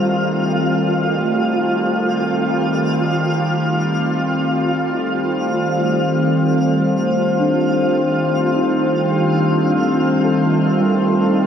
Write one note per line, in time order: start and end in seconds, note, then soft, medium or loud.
0.00 11.47 D#3 medium
0.00 1.41 G3 medium
0.00 11.47 G3 medium
0.00 11.47 A3 medium
0.00 11.47 C4 medium
0.00 11.47 F4 medium
0.00 11.47 F5 medium
1.19 3.65 A3 medium
7.40 8.48 D4 medium
8.54 9.90 D#4 medium
9.12 10.19 G4 medium
9.66 11.47 D4 medium
10.25 11.35 A4 medium
10.80 11.47 G3 medium
11.37 11.47 A4 soft